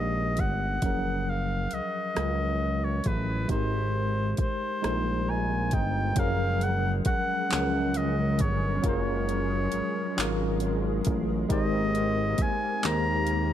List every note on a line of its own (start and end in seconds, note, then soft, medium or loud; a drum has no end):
0.00 0.41 A#1 medium
0.00 0.85 G#3 medium
0.00 0.85 D#4 medium
0.00 0.85 G4 medium
0.00 0.85 A#4 medium
0.00 0.85 C5 medium
0.00 0.33 D#5 medium
0.00 0.42 D#5 medium
0.37 0.80 G1 medium
0.37 1.31 F#5 loud
0.37 kick medium
0.37 closed hi-hat medium
0.82 1.68 F#1 medium
0.82 1.66 F3 medium
0.82 1.65 F#3 medium
0.82 1.65 C#4 medium
0.82 1.66 G#4 medium
0.82 kick loud
0.82 closed hi-hat medium
0.86 1.67 A#4 medium
1.30 1.75 F5 medium
1.71 1.82 C#2 soft
1.71 2.86 D#5 medium
1.71 closed hi-hat medium
2.15 3.02 C#2 medium
2.15 2.98 F#3 medium
2.15 2.99 C#4 medium
2.15 2.99 F4 medium
2.15 2.99 G#4 medium
2.15 3.00 A#4 medium
2.15 cross-stick loud
2.15 closed hi-hat soft
2.84 3.09 C#5 medium
3.04 3.47 A1 medium
3.04 3.50 B4 medium
3.04 kick medium
3.04 closed hi-hat medium
3.48 4.35 G#1 medium
3.48 4.31 G#3 medium
3.48 4.32 D#4 medium
3.48 4.32 G4 medium
3.48 4.33 A#4 medium
3.48 4.35 C5 medium
3.48 4.33 C5 medium
3.48 kick medium
3.48 closed hi-hat medium
4.37 4.48 A#1 soft
4.37 5.32 C5 medium
4.37 kick medium
4.37 closed hi-hat medium
4.82 5.75 A#1 medium
4.82 5.66 G3 medium
4.82 5.65 G#3 medium
4.82 5.65 D#4 medium
4.82 5.66 A#4 medium
4.82 cross-stick loud
4.82 closed hi-hat soft
4.86 5.67 C5 medium
5.29 5.75 G#5 medium
5.29 5.69 A#5 medium
5.71 6.13 G1 medium
5.71 6.14 D#5 medium
5.71 6.20 G5 medium
5.71 kick medium
5.71 closed hi-hat medium
6.15 7.02 F#1 loud
6.15 6.99 F3 medium
6.15 6.98 F#3 medium
6.15 11.46 G#3 medium
6.15 11.45 C#4 medium
6.15 6.99 C#4 medium
6.15 11.46 G#4 medium
6.15 7.00 G#4 medium
6.15 11.46 A#4 medium
6.15 6.65 F5 loud
6.15 kick loud
6.15 closed hi-hat medium
6.20 7.00 A#4 medium
6.61 6.94 F#5 loud
6.61 closed hi-hat medium
7.05 7.15 C#2 soft
7.05 7.99 F#5 loud
7.05 kick loud
7.05 closed hi-hat medium
7.50 8.43 C#2 loud
7.50 8.33 F3 medium
7.50 8.32 F#3 medium
7.50 8.32 C#4 medium
7.50 8.33 G#4 medium
7.50 clap loud
7.50 closed hi-hat medium
7.54 8.34 A#4 medium
7.94 8.43 D#5 medium
7.94 closed hi-hat medium
8.39 8.81 G1 medium
8.39 8.84 C#5 medium
8.39 kick medium
8.39 closed hi-hat medium
8.82 9.69 F#1 loud
8.82 9.65 F#3 medium
8.82 9.65 C#4 medium
8.82 9.66 F4 medium
8.82 9.66 G#4 medium
8.82 9.67 A#4 medium
8.82 kick loud
8.82 closed hi-hat medium
8.88 10.59 C#5 medium
9.29 closed hi-hat medium
9.72 9.82 G#1 soft
9.72 closed hi-hat medium
10.17 11.02 G#1 medium
10.17 10.99 F#3 medium
10.17 10.99 C#4 medium
10.17 11.00 F4 medium
10.17 11.01 G#4 medium
10.17 clap loud
10.17 closed hi-hat medium
10.21 11.01 A#4 medium
10.60 closed hi-hat medium
11.05 11.47 A1 medium
11.05 kick medium
11.05 closed hi-hat medium
11.49 12.35 G#1 loud
11.49 12.31 G#3 medium
11.49 13.53 A#3 medium
11.49 13.53 C4 medium
11.49 12.32 D#4 medium
11.49 12.32 G4 medium
11.49 13.53 A#4 medium
11.49 12.33 A#4 medium
11.49 12.33 C5 medium
11.49 12.43 D#5 loud
11.49 kick loud
11.49 closed hi-hat medium
11.95 closed hi-hat medium
12.38 12.48 D#2 soft
12.38 kick medium
12.38 closed hi-hat medium
12.42 12.87 G#5 loud
12.83 13.53 D#2 medium
12.83 13.53 G#3 medium
12.83 13.53 D#4 medium
12.83 13.53 G4 medium
12.83 13.53 A#4 medium
12.83 13.53 C5 medium
12.83 13.53 A#5 loud
12.83 clap loud
12.83 closed hi-hat medium
13.27 closed hi-hat medium